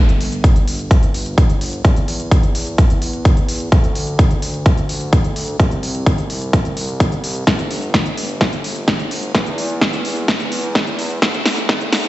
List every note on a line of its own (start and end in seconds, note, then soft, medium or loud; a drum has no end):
0.00 1.82 G1 medium
0.09 closed hi-hat soft
0.21 open hi-hat loud
0.32 closed hi-hat soft
0.44 kick loud
0.44 closed hi-hat medium
0.56 closed hi-hat soft
0.68 open hi-hat loud
0.79 closed hi-hat soft
0.91 kick loud
0.91 closed hi-hat medium
1.03 closed hi-hat soft
1.14 open hi-hat loud
1.26 closed hi-hat soft
1.38 kick loud
1.38 closed hi-hat medium
1.50 closed hi-hat soft
1.61 open hi-hat loud
1.73 closed hi-hat soft
1.85 3.70 E2 medium
1.85 kick loud
1.85 closed hi-hat medium
1.96 closed hi-hat soft
2.08 open hi-hat loud
2.20 closed hi-hat soft
2.31 kick loud
2.31 closed hi-hat medium
2.43 closed hi-hat soft
2.55 open hi-hat loud
2.67 closed hi-hat soft
2.78 kick loud
2.78 closed hi-hat medium
2.90 closed hi-hat soft
3.02 open hi-hat loud
3.13 closed hi-hat soft
3.25 kick loud
3.25 closed hi-hat medium
3.37 closed hi-hat soft
3.49 open hi-hat loud
3.60 closed hi-hat soft
3.72 5.57 D2 medium
3.72 kick loud
3.72 closed hi-hat medium
3.84 closed hi-hat soft
3.95 open hi-hat loud
4.07 closed hi-hat soft
4.19 kick loud
4.19 closed hi-hat medium
4.31 closed hi-hat soft
4.42 open hi-hat loud
4.54 closed hi-hat soft
4.66 kick loud
4.66 closed hi-hat medium
4.78 closed hi-hat soft
4.89 open hi-hat loud
5.01 closed hi-hat soft
5.13 kick loud
5.13 closed hi-hat medium
5.24 closed hi-hat soft
5.36 open hi-hat loud
5.48 closed hi-hat soft
5.60 7.45 C2 medium
5.60 kick loud
5.60 closed hi-hat medium
5.71 closed hi-hat soft
5.83 open hi-hat loud
5.95 closed hi-hat soft
6.06 kick loud
6.06 closed hi-hat medium
6.18 closed hi-hat soft
6.30 open hi-hat loud
6.42 closed hi-hat soft
6.53 kick loud
6.53 closed hi-hat medium
6.65 closed hi-hat soft
6.77 open hi-hat loud
6.89 closed hi-hat soft
7.00 kick loud
7.00 closed hi-hat medium
7.12 closed hi-hat soft
7.24 open hi-hat loud
7.36 closed hi-hat soft
7.47 9.32 G1 medium
7.47 kick loud
7.47 snare soft
7.47 closed hi-hat medium
7.59 closed hi-hat soft
7.71 open hi-hat loud
7.82 closed hi-hat soft
7.94 kick loud
7.94 snare medium
7.94 closed hi-hat medium
8.06 closed hi-hat soft
8.17 open hi-hat loud
8.29 closed hi-hat soft
8.41 kick loud
8.41 snare medium
8.41 closed hi-hat medium
8.53 closed hi-hat soft
8.64 open hi-hat loud
8.76 closed hi-hat soft
8.88 kick loud
8.88 snare medium
8.88 closed hi-hat medium
8.99 closed hi-hat soft
9.11 open hi-hat loud
9.23 closed hi-hat soft
9.35 11.20 E2 medium
9.35 kick loud
9.35 snare medium
9.35 closed hi-hat medium
9.46 closed hi-hat soft
9.58 open hi-hat loud
9.70 closed hi-hat soft
9.81 kick loud
9.81 snare medium
9.81 closed hi-hat medium
9.93 closed hi-hat soft
10.05 open hi-hat loud
10.17 closed hi-hat soft
10.28 kick loud
10.28 snare medium
10.28 closed hi-hat medium
10.40 closed hi-hat soft
10.52 open hi-hat loud
10.63 closed hi-hat soft
10.75 kick loud
10.75 snare medium
10.75 closed hi-hat medium
10.87 closed hi-hat soft
10.99 open hi-hat loud
11.10 closed hi-hat soft
11.22 12.08 D2 medium
11.22 kick loud
11.22 snare medium
11.22 closed hi-hat medium
11.34 closed hi-hat soft
11.46 snare medium
11.46 open hi-hat loud
11.57 closed hi-hat soft
11.69 kick loud
11.69 snare medium
11.69 closed hi-hat medium
11.81 closed hi-hat soft
11.93 snare medium
11.93 open hi-hat loud
12.04 closed hi-hat soft